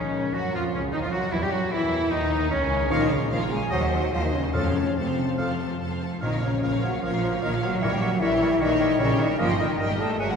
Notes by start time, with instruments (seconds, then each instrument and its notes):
Already playing: double bass section C#2, timpani A#2, harp A#2 F3 C#4 F4, bassoon C#3, cello section C#3, clarinet C#4, violin section C#4, french horn section C#4, oboe C#4, viola section C#4, flute C#5
0.14 harp A#4
0.33 double bass section F#2, bassoon F#3, cello section F#3, harp C#4, oboe F#4, french horn section F#4, clarinet F#4, violin section F#4, viola section F#4, flute F#5
0.53 double bass section F2, harp F3, bassoon F3, cello section F3, clarinet F4, viola section F4, oboe F4, violin section F4, french horn section F4, flute F5
0.74 double bass section C#2, bassoon C#3, cello section C#3, violin section C#4, viola section C#4, harp C#4, french horn section C#4, oboe C#4, clarinet C#4, flute C#5
0.92 double bass section D#2, bassoon D#3, cello section D#3, oboe D#4, viola section D#4, violin section D#4, clarinet D#4, french horn section D#4, harp A#4, flute D#5
1.02 double bass section F2, bassoon F3, cello section F3, viola section F4, violin section F4, oboe F4, clarinet F4, french horn section F4, flute F5
1.11 double bass section F#2, bassoon F#3, cello section F#3, harp C#4, oboe F#4, violin section F#4, viola section F#4, clarinet F#4, french horn section F#4, flute F#5
1.32 double bass section E2, harp A#2, bassoon E3, cello section E3, oboe E4, viola section E4, violin section E4, french horn section E4, clarinet E4, flute E5
1.41 double bass section G2, bassoon G3, cello section G3, violin section G4, viola section G4, oboe G4, clarinet G4, french horn section G4, flute G5
1.50 double bass section F#2, bassoon F#3, cello section F#3, harp C#4, violin section F#4, viola section F#4, oboe F#4, french horn section F#4, clarinet F#4, flute F#5
1.71 double bass section E2, cello section E3, bassoon E3, violin section E4, oboe E4, viola section E4, french horn section E4, clarinet E4, harp A#4, flute E5
1.91 harp C#4
2.11 double bass section D#2, bassoon D#3, cello section D#3, harp A#3, violin section D#4, oboe D#4, viola section D#4, french horn section D#4, clarinet D#4, flute D#5
2.31 harp C#4
2.51 double bass section C#2, cello section C#3, bassoon C#3, viola section C#4, french horn section C#4, oboe C#4, violin section C#4, clarinet C#4, harp A#4, flute C#5
2.71 harp C#4
2.89 double bass section A#1, timpani A#2, harp A#2, cello section D#3, bassoon F3, viola section A#3, french horn section D#4, violin section A#4 F5, clarinet A#4, oboe C#5, flute D#5
3.01 viola section F3, violin section F4 C#5
3.09 cello section C#3, viola section A#3, french horn section C#4, harp C#4, violin section A#4 F5
3.14 flute C#5
3.20 viola section F3, violin section F4 C#5
3.31 double bass section A#1, cello section F3, viola section A#3, french horn section F4, violin section A#4 F5, harp A#4, flute F5
3.40 viola section F3, violin section F4 C#5
3.50 cello section G#3, viola section A#3, harp C#4, french horn section G#4, violin section A#4 F5, flute G#5
3.61 viola section F3, violin section F4 C#5
3.70 double bass section D#2, viola section D#3, harp D#3, bassoon F#3, cello section F#3, french horn section F#4, clarinet C5, violin section C5 D#5, oboe D#5, flute F#5
3.82 viola section F#3, violin section C5 D#5
3.91 viola section D#3, harp C4, violin section C5 D#5
4.02 viola section F#3, violin section C5 D#5
4.12 double bass section D#2, viola section D#3, cello section F3, french horn section F4, violin section C5 D#5, harp C5, flute F5
4.22 cello section D#3, viola section F#3, french horn section D#4, violin section C5 D#5, flute D#5
4.33 cello section C#3, viola section D#3, harp C4, french horn section C#4, violin section C5 D#5, flute C#5
4.43 viola section F#3, violin section C5 D#5
4.53 timpani F2, double bass section F2, cello section C#3, bassoon F3, harp F3, viola section A3, french horn section C#4, violin section A4 A5, clarinet A4, flute C#5, oboe F5
4.64 viola section F3, violin section C5 F5
4.75 viola section A3, harp F4, violin section A4 A5
4.86 viola section F3, violin section C5 F5
4.96 double bass section F2, cello section C3, viola section A3, french horn section C4, harp A4, violin section A4 A5, flute C5
5.06 viola section F3, violin section C5 F5
5.17 viola section A3, harp F4, violin section A4 A5
5.27 viola section F3, violin section C5 F5
5.37 double bass section F2, bassoon F3, viola section A3, violin section A4 A5, clarinet A4, oboe F5
5.48 viola section F3, violin section C5 F5
5.59 viola section A3, harp F4, violin section A4 A5
5.70 viola section F3, violin section C5 F5
5.80 double bass section F2, viola section A3, violin section A4 A5, harp A4
5.91 viola section F3, violin section C5 F5
6.02 viola section A3, harp F4, violin section A4 A5
6.12 viola section F3, violin section C5 F5
6.21 double bass section A#1, harp A#2, timpani A#2, cello section D#3, bassoon F3, viola section A#3, french horn section D#4, violin section A#4 C#5, clarinet A#4, flute D#5, oboe F5
6.32 viola section F3, violin section C#5 F5
6.42 cello section C#3, bassoon F3, harp A#3, viola section A#3, french horn section C#4, violin section A#4 C#5, clarinet A#4, flute C#5, oboe F5
6.51 violin section C#5 F5
6.55 viola section F3
6.62 double bass section A#1, bassoon F3, viola section A#3, violin section A#4 C#5, clarinet A#4, harp F5, oboe F5
6.72 viola section F3, violin section C#5 F5
6.82 bassoon F3, cello section F#3, harp A#3, viola section A#3, french horn section F#4, violin section A#4 C#5, clarinet A#4, oboe F5, flute F#5
6.93 viola section F3, violin section C#5 F5
7.01 double bass section A#1, bassoon F3, cello section F3, harp F3, french horn section F4, clarinet A#4, violin section A#4 C#5, oboe F5, flute F5
7.06 viola section A#3
7.14 viola section F3, violin section C#5 F5
7.23 bassoon F3, harp A#3, viola section A#3, clarinet A#4, violin section A#4 C#5, oboe F5
7.33 viola section F3, violin section C#5 F5
7.41 double bass section A#1, cello section D#3, bassoon F3, french horn section D#4, clarinet A#4, violin section A#4 C#5, flute D#5, oboe F5
7.45 viola section A#3
7.52 cello section F3, viola section F3, french horn section F4, violin section C#5 F5, flute F5
7.62 bassoon F3, cello section F#3, harp A#3, viola section A#3, french horn section F#4, violin section A#4 C#5, clarinet A#4, oboe F5, flute F#5
7.72 viola section F3, violin section C#5 F5
7.80 double bass section A#1, timpani A#2, harp A#2, cello section E3, viola section E3, bassoon G3, french horn section E4, violin section A#4 E5, clarinet A#4, oboe C#5, flute E5
7.90 cello section G3, viola section G3, violin section C#5, flute G5
7.94 violin section G4, french horn section G4
8.01 viola section E3, cello section F#3, bassoon G3, harp A#3, french horn section F#4, clarinet A#4, violin section A#4 E5, oboe C#5, flute F#5
8.11 viola section G3, violin section G4 C#5
8.20 double bass section A#1, cello section E3, viola section E3, bassoon G3, french horn section E4, violin section A#4 E5, clarinet A#4, oboe C#5, harp C#5, flute E5
8.31 viola section G3, violin section G4 C#5
8.41 viola section E3, bassoon G3, harp A#3, violin section A#4 E5, clarinet A#4, oboe C#5
8.51 viola section G3, violin section G4 C#5
8.60 double bass section A#1, harp A#2, cello section D#3, viola section E3, bassoon G3, french horn section D#4, clarinet A#4, violin section A#4 E5, oboe C#5, flute D#5
8.70 viola section G3, violin section G4 C#5
8.79 viola section E3, bassoon G3, harp G3, clarinet A#4, violin section A#4 E5, oboe C#5
8.89 viola section G3, violin section G4 C#5
8.98 double bass section A#1, cello section C#3, viola section E3, bassoon G3, french horn section C#4, clarinet A#4, violin section A#4 E5, flute C#5, oboe C#5, harp C#5
9.09 viola section G3, violin section G4 C#5
9.17 cello section D#3, viola section E3, bassoon G3, harp A#3, french horn section D#4, clarinet A#4, violin section A#4 E5, oboe C#5, flute D#5
9.30 viola section G3, violin section G4 C#5
9.37 double bass section G1, harp G2, cello section F3, bassoon G3, viola section A#3, clarinet A#4, violin section A#4 G5, oboe D#5, flute F5
9.42 french horn section F4
9.49 viola section G3, violin section G4 D#5
9.59 cello section D#3, bassoon G3, harp A#3, viola section A#3, french horn section D#4, clarinet A#4, violin section A#4 G5, oboe D#5, flute D#5
9.68 viola section G3, violin section G4 D#5
9.79 double bass section G1, bassoon G3, viola section A#3, clarinet A#4, violin section A#4 G5, harp A#4, oboe D#5
9.89 viola section G3, violin section G4 D#5
9.98 bassoon G3, cello section A3, harp A#3, viola section A#3, french horn section A4, violin section A#4 G5, clarinet A#4, oboe D#5, flute A5
10.10 viola section G3, violin section G4 D#5
10.19 double bass section F#1, harp F#2, viola section F#3, bassoon F#3, cello section G#3, french horn section G#4, violin section A#4 E5, clarinet A#4, oboe F#5, flute G#5
10.29 viola section E3, cello section F#3, violin section F#4 F#5, french horn section F#4, flute F#5